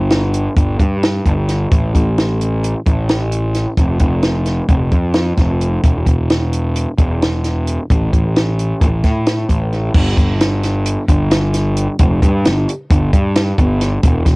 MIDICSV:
0, 0, Header, 1, 3, 480
1, 0, Start_track
1, 0, Tempo, 458015
1, 1796, Time_signature, 9, 3, 24, 8
1, 8995, Tempo, 454201
1, 15099, End_track
2, 0, Start_track
2, 0, Title_t, "Picked electric bass"
2, 0, Program_c, 0, 34
2, 0, Note_on_c, 0, 31, 79
2, 491, Note_off_c, 0, 31, 0
2, 594, Note_on_c, 0, 31, 91
2, 801, Note_off_c, 0, 31, 0
2, 835, Note_on_c, 0, 43, 76
2, 1249, Note_off_c, 0, 43, 0
2, 1318, Note_on_c, 0, 31, 81
2, 1730, Note_off_c, 0, 31, 0
2, 1798, Note_on_c, 0, 33, 91
2, 2004, Note_off_c, 0, 33, 0
2, 2041, Note_on_c, 0, 33, 75
2, 2866, Note_off_c, 0, 33, 0
2, 3003, Note_on_c, 0, 33, 76
2, 3828, Note_off_c, 0, 33, 0
2, 3959, Note_on_c, 0, 29, 94
2, 4165, Note_off_c, 0, 29, 0
2, 4195, Note_on_c, 0, 29, 77
2, 4817, Note_off_c, 0, 29, 0
2, 4916, Note_on_c, 0, 29, 88
2, 5124, Note_off_c, 0, 29, 0
2, 5160, Note_on_c, 0, 41, 75
2, 5573, Note_off_c, 0, 41, 0
2, 5635, Note_on_c, 0, 29, 86
2, 6050, Note_off_c, 0, 29, 0
2, 6118, Note_on_c, 0, 28, 91
2, 6325, Note_off_c, 0, 28, 0
2, 6358, Note_on_c, 0, 28, 82
2, 7185, Note_off_c, 0, 28, 0
2, 7318, Note_on_c, 0, 28, 81
2, 8144, Note_off_c, 0, 28, 0
2, 8287, Note_on_c, 0, 33, 90
2, 8489, Note_off_c, 0, 33, 0
2, 8520, Note_on_c, 0, 33, 72
2, 9138, Note_off_c, 0, 33, 0
2, 9238, Note_on_c, 0, 33, 93
2, 9445, Note_off_c, 0, 33, 0
2, 9480, Note_on_c, 0, 45, 77
2, 9894, Note_off_c, 0, 45, 0
2, 9959, Note_on_c, 0, 33, 78
2, 10373, Note_off_c, 0, 33, 0
2, 10437, Note_on_c, 0, 31, 91
2, 10645, Note_off_c, 0, 31, 0
2, 10677, Note_on_c, 0, 31, 82
2, 11506, Note_off_c, 0, 31, 0
2, 11639, Note_on_c, 0, 31, 97
2, 12466, Note_off_c, 0, 31, 0
2, 12603, Note_on_c, 0, 29, 104
2, 12808, Note_off_c, 0, 29, 0
2, 12838, Note_on_c, 0, 43, 83
2, 13092, Note_on_c, 0, 31, 87
2, 13108, Note_off_c, 0, 43, 0
2, 13293, Note_off_c, 0, 31, 0
2, 13565, Note_on_c, 0, 31, 89
2, 13768, Note_off_c, 0, 31, 0
2, 13802, Note_on_c, 0, 43, 87
2, 14212, Note_off_c, 0, 43, 0
2, 14277, Note_on_c, 0, 31, 94
2, 14689, Note_off_c, 0, 31, 0
2, 14759, Note_on_c, 0, 28, 99
2, 14964, Note_off_c, 0, 28, 0
2, 14998, Note_on_c, 0, 28, 83
2, 15099, Note_off_c, 0, 28, 0
2, 15099, End_track
3, 0, Start_track
3, 0, Title_t, "Drums"
3, 108, Note_on_c, 9, 42, 69
3, 115, Note_on_c, 9, 38, 96
3, 213, Note_off_c, 9, 42, 0
3, 219, Note_off_c, 9, 38, 0
3, 353, Note_on_c, 9, 42, 58
3, 458, Note_off_c, 9, 42, 0
3, 593, Note_on_c, 9, 36, 100
3, 598, Note_on_c, 9, 42, 71
3, 697, Note_off_c, 9, 36, 0
3, 703, Note_off_c, 9, 42, 0
3, 833, Note_on_c, 9, 36, 68
3, 835, Note_on_c, 9, 42, 51
3, 938, Note_off_c, 9, 36, 0
3, 940, Note_off_c, 9, 42, 0
3, 1079, Note_on_c, 9, 42, 75
3, 1085, Note_on_c, 9, 38, 99
3, 1184, Note_off_c, 9, 42, 0
3, 1190, Note_off_c, 9, 38, 0
3, 1316, Note_on_c, 9, 36, 65
3, 1316, Note_on_c, 9, 42, 55
3, 1420, Note_off_c, 9, 36, 0
3, 1421, Note_off_c, 9, 42, 0
3, 1555, Note_on_c, 9, 42, 56
3, 1562, Note_on_c, 9, 38, 32
3, 1660, Note_off_c, 9, 42, 0
3, 1666, Note_off_c, 9, 38, 0
3, 1797, Note_on_c, 9, 42, 75
3, 1798, Note_on_c, 9, 36, 100
3, 1901, Note_off_c, 9, 42, 0
3, 1902, Note_off_c, 9, 36, 0
3, 2040, Note_on_c, 9, 36, 70
3, 2043, Note_on_c, 9, 42, 59
3, 2145, Note_off_c, 9, 36, 0
3, 2148, Note_off_c, 9, 42, 0
3, 2283, Note_on_c, 9, 42, 75
3, 2289, Note_on_c, 9, 38, 98
3, 2388, Note_off_c, 9, 42, 0
3, 2394, Note_off_c, 9, 38, 0
3, 2525, Note_on_c, 9, 42, 61
3, 2629, Note_off_c, 9, 42, 0
3, 2765, Note_on_c, 9, 42, 84
3, 2870, Note_off_c, 9, 42, 0
3, 3001, Note_on_c, 9, 36, 72
3, 3003, Note_on_c, 9, 42, 60
3, 3106, Note_off_c, 9, 36, 0
3, 3107, Note_off_c, 9, 42, 0
3, 3238, Note_on_c, 9, 42, 81
3, 3245, Note_on_c, 9, 38, 101
3, 3343, Note_off_c, 9, 42, 0
3, 3349, Note_off_c, 9, 38, 0
3, 3477, Note_on_c, 9, 42, 60
3, 3582, Note_off_c, 9, 42, 0
3, 3716, Note_on_c, 9, 42, 57
3, 3722, Note_on_c, 9, 38, 32
3, 3821, Note_off_c, 9, 42, 0
3, 3827, Note_off_c, 9, 38, 0
3, 3954, Note_on_c, 9, 42, 75
3, 3956, Note_on_c, 9, 36, 94
3, 4059, Note_off_c, 9, 42, 0
3, 4060, Note_off_c, 9, 36, 0
3, 4187, Note_on_c, 9, 42, 55
3, 4195, Note_on_c, 9, 36, 67
3, 4292, Note_off_c, 9, 42, 0
3, 4300, Note_off_c, 9, 36, 0
3, 4429, Note_on_c, 9, 42, 72
3, 4435, Note_on_c, 9, 38, 93
3, 4534, Note_off_c, 9, 42, 0
3, 4540, Note_off_c, 9, 38, 0
3, 4670, Note_on_c, 9, 42, 56
3, 4676, Note_on_c, 9, 38, 34
3, 4775, Note_off_c, 9, 42, 0
3, 4781, Note_off_c, 9, 38, 0
3, 4912, Note_on_c, 9, 42, 76
3, 4913, Note_on_c, 9, 36, 108
3, 5017, Note_off_c, 9, 42, 0
3, 5018, Note_off_c, 9, 36, 0
3, 5153, Note_on_c, 9, 42, 53
3, 5156, Note_on_c, 9, 36, 71
3, 5257, Note_off_c, 9, 42, 0
3, 5260, Note_off_c, 9, 36, 0
3, 5385, Note_on_c, 9, 42, 74
3, 5391, Note_on_c, 9, 38, 106
3, 5490, Note_off_c, 9, 42, 0
3, 5496, Note_off_c, 9, 38, 0
3, 5632, Note_on_c, 9, 42, 57
3, 5635, Note_on_c, 9, 36, 67
3, 5639, Note_on_c, 9, 38, 33
3, 5737, Note_off_c, 9, 42, 0
3, 5740, Note_off_c, 9, 36, 0
3, 5743, Note_off_c, 9, 38, 0
3, 5880, Note_on_c, 9, 42, 54
3, 5985, Note_off_c, 9, 42, 0
3, 6118, Note_on_c, 9, 36, 99
3, 6118, Note_on_c, 9, 42, 79
3, 6222, Note_off_c, 9, 36, 0
3, 6223, Note_off_c, 9, 42, 0
3, 6357, Note_on_c, 9, 36, 70
3, 6358, Note_on_c, 9, 42, 60
3, 6461, Note_off_c, 9, 36, 0
3, 6463, Note_off_c, 9, 42, 0
3, 6602, Note_on_c, 9, 42, 72
3, 6608, Note_on_c, 9, 38, 95
3, 6707, Note_off_c, 9, 42, 0
3, 6713, Note_off_c, 9, 38, 0
3, 6842, Note_on_c, 9, 42, 66
3, 6947, Note_off_c, 9, 42, 0
3, 7082, Note_on_c, 9, 42, 85
3, 7186, Note_off_c, 9, 42, 0
3, 7318, Note_on_c, 9, 42, 59
3, 7320, Note_on_c, 9, 36, 72
3, 7423, Note_off_c, 9, 42, 0
3, 7425, Note_off_c, 9, 36, 0
3, 7569, Note_on_c, 9, 42, 78
3, 7575, Note_on_c, 9, 38, 100
3, 7674, Note_off_c, 9, 42, 0
3, 7680, Note_off_c, 9, 38, 0
3, 7799, Note_on_c, 9, 42, 55
3, 7805, Note_on_c, 9, 38, 30
3, 7904, Note_off_c, 9, 42, 0
3, 7910, Note_off_c, 9, 38, 0
3, 8040, Note_on_c, 9, 42, 60
3, 8145, Note_off_c, 9, 42, 0
3, 8280, Note_on_c, 9, 36, 103
3, 8281, Note_on_c, 9, 42, 73
3, 8385, Note_off_c, 9, 36, 0
3, 8386, Note_off_c, 9, 42, 0
3, 8520, Note_on_c, 9, 36, 67
3, 8522, Note_on_c, 9, 42, 56
3, 8625, Note_off_c, 9, 36, 0
3, 8626, Note_off_c, 9, 42, 0
3, 8761, Note_on_c, 9, 42, 73
3, 8767, Note_on_c, 9, 38, 93
3, 8866, Note_off_c, 9, 42, 0
3, 8872, Note_off_c, 9, 38, 0
3, 9000, Note_on_c, 9, 42, 58
3, 9106, Note_off_c, 9, 42, 0
3, 9238, Note_on_c, 9, 36, 103
3, 9238, Note_on_c, 9, 42, 78
3, 9343, Note_off_c, 9, 36, 0
3, 9344, Note_off_c, 9, 42, 0
3, 9474, Note_on_c, 9, 42, 57
3, 9477, Note_on_c, 9, 36, 72
3, 9480, Note_on_c, 9, 38, 31
3, 9579, Note_off_c, 9, 42, 0
3, 9583, Note_off_c, 9, 36, 0
3, 9586, Note_off_c, 9, 38, 0
3, 9716, Note_on_c, 9, 42, 74
3, 9722, Note_on_c, 9, 38, 106
3, 9822, Note_off_c, 9, 42, 0
3, 9828, Note_off_c, 9, 38, 0
3, 9957, Note_on_c, 9, 36, 62
3, 9960, Note_on_c, 9, 42, 55
3, 10063, Note_off_c, 9, 36, 0
3, 10066, Note_off_c, 9, 42, 0
3, 10202, Note_on_c, 9, 42, 57
3, 10208, Note_on_c, 9, 38, 31
3, 10308, Note_off_c, 9, 42, 0
3, 10314, Note_off_c, 9, 38, 0
3, 10435, Note_on_c, 9, 36, 109
3, 10435, Note_on_c, 9, 49, 106
3, 10541, Note_off_c, 9, 36, 0
3, 10541, Note_off_c, 9, 49, 0
3, 10677, Note_on_c, 9, 36, 76
3, 10680, Note_on_c, 9, 42, 70
3, 10783, Note_off_c, 9, 36, 0
3, 10786, Note_off_c, 9, 42, 0
3, 10922, Note_on_c, 9, 42, 90
3, 10929, Note_on_c, 9, 38, 101
3, 11028, Note_off_c, 9, 42, 0
3, 11034, Note_off_c, 9, 38, 0
3, 11161, Note_on_c, 9, 42, 72
3, 11167, Note_on_c, 9, 38, 36
3, 11267, Note_off_c, 9, 42, 0
3, 11273, Note_off_c, 9, 38, 0
3, 11397, Note_on_c, 9, 42, 103
3, 11503, Note_off_c, 9, 42, 0
3, 11638, Note_on_c, 9, 36, 75
3, 11640, Note_on_c, 9, 42, 68
3, 11744, Note_off_c, 9, 36, 0
3, 11746, Note_off_c, 9, 42, 0
3, 11877, Note_on_c, 9, 42, 94
3, 11883, Note_on_c, 9, 38, 104
3, 11983, Note_off_c, 9, 42, 0
3, 11989, Note_off_c, 9, 38, 0
3, 12117, Note_on_c, 9, 42, 67
3, 12123, Note_on_c, 9, 38, 34
3, 12223, Note_off_c, 9, 42, 0
3, 12229, Note_off_c, 9, 38, 0
3, 12359, Note_on_c, 9, 42, 67
3, 12465, Note_off_c, 9, 42, 0
3, 12593, Note_on_c, 9, 42, 87
3, 12600, Note_on_c, 9, 36, 110
3, 12699, Note_off_c, 9, 42, 0
3, 12706, Note_off_c, 9, 36, 0
3, 12841, Note_on_c, 9, 36, 73
3, 12845, Note_on_c, 9, 42, 67
3, 12947, Note_off_c, 9, 36, 0
3, 12951, Note_off_c, 9, 42, 0
3, 13084, Note_on_c, 9, 42, 85
3, 13090, Note_on_c, 9, 38, 99
3, 13189, Note_off_c, 9, 42, 0
3, 13196, Note_off_c, 9, 38, 0
3, 13333, Note_on_c, 9, 42, 70
3, 13439, Note_off_c, 9, 42, 0
3, 13564, Note_on_c, 9, 36, 116
3, 13566, Note_on_c, 9, 42, 92
3, 13669, Note_off_c, 9, 36, 0
3, 13671, Note_off_c, 9, 42, 0
3, 13802, Note_on_c, 9, 36, 77
3, 13804, Note_on_c, 9, 42, 64
3, 13908, Note_off_c, 9, 36, 0
3, 13910, Note_off_c, 9, 42, 0
3, 14039, Note_on_c, 9, 42, 93
3, 14045, Note_on_c, 9, 38, 107
3, 14144, Note_off_c, 9, 42, 0
3, 14151, Note_off_c, 9, 38, 0
3, 14277, Note_on_c, 9, 42, 70
3, 14279, Note_on_c, 9, 36, 72
3, 14382, Note_off_c, 9, 42, 0
3, 14384, Note_off_c, 9, 36, 0
3, 14518, Note_on_c, 9, 42, 74
3, 14525, Note_on_c, 9, 38, 37
3, 14624, Note_off_c, 9, 42, 0
3, 14630, Note_off_c, 9, 38, 0
3, 14754, Note_on_c, 9, 42, 98
3, 14757, Note_on_c, 9, 36, 114
3, 14859, Note_off_c, 9, 42, 0
3, 14863, Note_off_c, 9, 36, 0
3, 14993, Note_on_c, 9, 42, 73
3, 14995, Note_on_c, 9, 36, 76
3, 15000, Note_on_c, 9, 38, 35
3, 15099, Note_off_c, 9, 36, 0
3, 15099, Note_off_c, 9, 38, 0
3, 15099, Note_off_c, 9, 42, 0
3, 15099, End_track
0, 0, End_of_file